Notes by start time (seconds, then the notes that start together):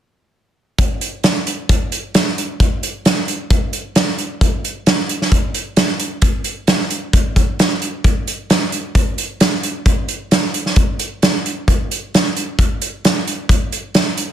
0.78 kick, closed hi-hat
1.01 closed hi-hat
1.23 snare, closed hi-hat
1.47 closed hi-hat
1.69 kick, closed hi-hat
1.92 closed hi-hat
2.14 snare, closed hi-hat
2.38 closed hi-hat
2.60 kick, closed hi-hat
2.83 closed hi-hat
3.05 snare, closed hi-hat
3.28 closed hi-hat
3.50 kick, closed hi-hat
3.73 closed hi-hat
3.95 snare, closed hi-hat
4.18 closed hi-hat
4.41 kick, closed hi-hat
4.64 closed hi-hat
4.86 snare, closed hi-hat
5.09 closed hi-hat
5.22 snare
5.32 kick, closed hi-hat
5.54 closed hi-hat
5.76 snare, closed hi-hat
5.99 closed hi-hat
6.21 kick, closed hi-hat
6.44 closed hi-hat
6.67 snare, closed hi-hat
6.90 closed hi-hat
7.13 kick, closed hi-hat
7.36 kick, closed hi-hat
7.59 snare, closed hi-hat
7.82 closed hi-hat
8.04 kick, closed hi-hat
8.27 closed hi-hat
8.50 snare, closed hi-hat
8.72 closed hi-hat
8.95 kick, closed hi-hat
9.18 closed hi-hat
9.40 snare, closed hi-hat
9.63 closed hi-hat
9.86 kick, closed hi-hat
10.08 closed hi-hat
10.31 snare, closed hi-hat
10.54 closed hi-hat
10.66 snare
10.76 kick, closed hi-hat
10.99 closed hi-hat
11.22 snare, closed hi-hat
11.46 closed hi-hat
11.68 kick, closed hi-hat
11.91 closed hi-hat
12.14 snare, closed hi-hat
12.36 closed hi-hat
12.59 kick, closed hi-hat
12.81 closed hi-hat
13.05 snare, closed hi-hat
13.27 closed hi-hat
13.49 kick, closed hi-hat
13.72 closed hi-hat
13.94 snare, closed hi-hat
14.17 closed hi-hat